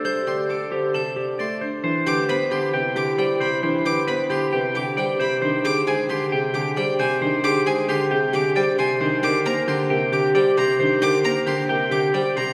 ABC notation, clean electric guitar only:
X:1
M:4/4
L:1/8
Q:1/4=134
K:C
V:1 name="Clean electric guitar"
c G A G a G d c | c G B G g G d c | c G B G g G d c | c G _A G g G d c |
c G _A G g G d c | c G _B G g G d c | c G _B G g G d c |]